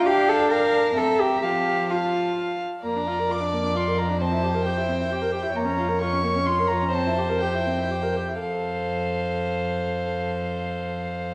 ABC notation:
X:1
M:3/4
L:1/16
Q:1/4=128
K:F
V:1 name="Violin"
g4 g2 a2 b4 | a4 a6 z2 | b4 d'4 c'2 b2 | a4 g8 |
b4 _d'4 c'2 b2 | a4 g8 | f12- | f12 |]
V:2 name="Violin"
f4 f4 e4 | f4 f6 z2 | d12 | c12 |
_d12 | c8- c2 z2 | c12- | c12 |]
V:3 name="Cello"
G2 A2 B4 A2 G2 | G4 F6 z2 | F,,12- | F,,12 |
F,,12- | F,,8- F,,2 z2 | F,,12- | F,,12 |]
V:4 name="Viola"
D8 C4 | F,8- F,2 z2 | B, D F B F D B, D F B F D | C E G B G E C E G B G E |
B, _D F B F D B, D F B F D | C E G B G E C E G B G E | A12- | A12 |]